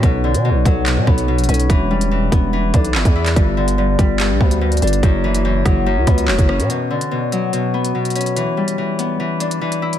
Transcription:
<<
  \new Staff \with { instrumentName = "Harp" } { \clef bass \time 4/4 \key b \minor \tempo 4 = 144 b,8 d8 b,8 fis8 b,8 b8 b,8 cis'8 | e8 g8 e8 b8 e8 d'8 e8 e'8 | g,8 d8 g,8 g8 g,8 b8 g,8 d'8 | fis,8 e8 fis,8 fis8 fis,8 b8 fis,8 cis'8 |
b,8 d8 b,8 fis8 b,8 b8 b,8 cis'8 | e8 g8 e8 b8 e8 d'8 e8 e'8 | }
  \new Staff \with { instrumentName = "808-style bass" } { \clef bass \time 4/4 \key b \minor b,,8. b,16. b,,16. b,,8. b,16 b,,8. ais,,16 b,,8 | e,,4. e,,4 b,,8 g,,16 e,8. | g,,4. g,,8. ais,,16 d,4 g,,8 | fis,,4. fis,,8. cis,16 cis,8 e,,16 fis,,8 ais,16 |
r1 | r1 | }
  \new DrumStaff \with { instrumentName = "Drums" } \drummode { \time 4/4 <hh bd>8. hh16 r8 <hh bd>8 <hc hh>8 bd16 hh16 r16 hh32 hh32 hh32 hh32 hh16 | <hh bd>8. hh16 r8 <hh bd>8 r8 <hh bd>16 hh16 hc16 <hh bd>8 <hc hh>16 | <hh bd>8. hh16 r8 <hh bd>8 <hc hh>8 bd16 hh16 r16 hh32 hh32 hh32 hh32 hh16 | <hh bd>8. hh16 r8 <hh bd ss>8 r8 <hh bd>16 hh16 hc16 <hh bd>16 ss16 hh16 |
hh8. hh16 r8 hh8 hh8. hh16 r16 hh32 hh32 hh32 hh32 hh16 | hh8. hh16 r8 hh8 r8 hh16 hh16 r16 hh8 hh16 | }
>>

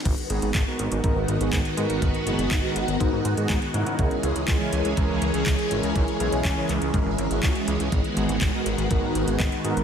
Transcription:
<<
  \new Staff \with { instrumentName = "Analog polysynth" } { \time 4/4 \key gis \minor \tempo 4 = 122 r8 <gis, b dis' fis' gis'>16 r8 <gis, b dis' fis' ais'>8. <gis, b dis' fis' ais'>8. <gis, b dis' fis' gis'>16 r8 <gis, b dis' fis' ais'>8~ | <gis, b dis' fis' ais'>8 <gis, b dis' fis' gis'>16 r8 <gis, b dis' fis' ais'>8. <gis, b dis' fis' ais'>8. <gis, b dis' fis' gis'>16 r8 <cis gis cis' e' ais'>8~ | <cis gis cis' e' ais'>8 <cis gis cis' e' gis'>16 r8 <cis gis cis' e' ais'>8. <cis gis cis' e' ais'>8. <cis gis cis' e' gis'>16 r8 <cis gis cis' e' ais'>8~ | <cis gis cis' e' ais'>8 <cis gis cis' e' gis'>16 r8 <cis gis cis' e' ais'>8. <cis gis cis' e' ais'>8. <cis gis cis' e' fis'>8. <gis, gis cis' e' gis'>16 r16 |
r8 <gis, b dis' fis' gis'>16 r8 <gis, b dis' fis' ais'>8. <gis, b dis' fis' ais'>8. <gis, b dis' fis' gis'>16 r8 <gis, b dis' fis' ais'>8 | }
  \new Staff \with { instrumentName = "String machine" } { \time 4/4 \key gis \minor << { <dis b fis'>1~ | <dis b fis'>1 | <e cis' gis'>1~ | <e cis' gis'>1 |
<dis b fis'>1 | } \\ { gis1~ | gis1~ | gis1~ | gis1~ |
gis1 | } >> }
  \new Staff \with { instrumentName = "Analog synth bass" } { \clef bass \time 4/4 \key gis \minor gis,,16 r16 gis,,16 gis,,16 gis,,16 r16 gis,,16 gis,,16 gis,,16 gis,,16 gis,,16 gis,,16 gis,,16 r16 gis,16 gis,,16 | fis,,16 r16 fis,,16 fis,,16 gis,,16 r16 gis,,16 gis,,16 gis,16 gis,16 gis,16 gis,16 gis,16 r16 gis,16 gis,16 | cis,16 r16 cis,16 cis,16 cis,16 r16 cis,16 cis,16 cis,16 cis,16 cis,16 cis,16 cis,16 r16 gis,,16 cis,16 | b,,16 r16 b,,16 b,,16 cis,16 r16 cis,16 cis,16 gis,,16 gis,,16 gis,,16 gis,,16 cis,16 r16 cis,16 cis,16 |
gis,,16 r16 gis,,16 gis,,16 gis,,16 r16 gis,,16 gis,,16 gis,,16 gis,,16 gis,,16 gis,,16 gis,,16 r16 gis,16 gis,,16 | }
  \new DrumStaff \with { instrumentName = "Drums" } \drummode { \time 4/4 <cymc hh bd>16 hh16 hh16 hh16 <hc hh bd>8 hh16 hh16 <hh bd>8 hh16 hh16 <hc hh bd>16 hh16 hh16 hh16 | <hh bd>16 hh16 hh16 hh16 <hc hh bd>8 hh16 hh16 <hh bd>8 hh16 hh16 <hc hh bd>16 hh16 hh16 hh16 | <hh bd>16 hh16 hh16 hh16 <hc hh bd>8 hh16 hh16 <hh bd>8 hh16 hh16 <hc hh bd>16 hh16 hh16 hh16 | <hh bd>16 hh16 hh16 hh16 <hc hh bd>8 <hc hh>16 hh16 <hh bd>8 hh16 hh16 <hc hh bd>16 hh16 hh16 hh16 |
<hh bd>16 hh16 hh16 hh16 <hc hh bd>8 hh16 hh16 <hh bd>8 hh16 hh16 <hc hh bd>16 hh16 hh16 hh16 | }
>>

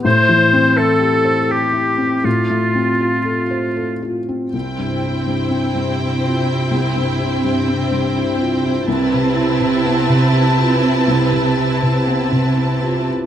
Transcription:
<<
  \new Staff \with { instrumentName = "Violin section" } { \time 3/4 \key c \major \tempo 4 = 82 r2. | r2. | <c'' g''>2.~ | <c'' g''>2. |
<b' a''>2.~ | <b' a''>2~ <b' a''>8 r8 | }
  \new Staff \with { instrumentName = "Clarinet" } { \time 3/4 \key c \major c''4 a'4 g'4 | f'2~ f'8 r8 | r2. | r2. |
r2. | r2. | }
  \new Staff \with { instrumentName = "Oboe" } { \time 3/4 \key c \major c''4 a'4 g'4 | f'2~ f'8 r8 | r2. | r2. |
r2. | r2. | }
  \new Staff \with { instrumentName = "Viola section" } { \time 3/4 \key c \major r2. | r2. | <c' e'>2.~ | <c' e'>2. |
<c' e'>2.~ | <c' e'>2~ <c' e'>8 r8 | }
  \new Staff \with { instrumentName = "Felt piano" } { \time 3/4 \key c \major \tuplet 3/2 { a,8 e8 c'8 e'8 g'8 c''8 g'8 e'8 c'8 } | \tuplet 3/2 { a,8 a8 c'8 f'8 a'8 c''8 a'8 f'8 c'8 } | \tuplet 3/2 { c,8 g,8 e'8 g,8 c'8 g,8 e'8 f'8 e'8 } | \tuplet 3/2 { c,8 g,8 e'8 g,8 c'8 g,8 e'8 f'8 e'8 } |
\tuplet 3/2 { c,8 c8 e'8 c8 b8 c8 e'8 f'8 e'8 } | \tuplet 3/2 { c,8 c8 e'8 c8 b8 c8 e'8 f'8 e'8 } | }
  \new Staff \with { instrumentName = "Cello section" } { \clef bass \time 3/4 \key c \major r2. | r2. | c2.~ | c2. |
c2.~ | c2~ c8 r8 | }
>>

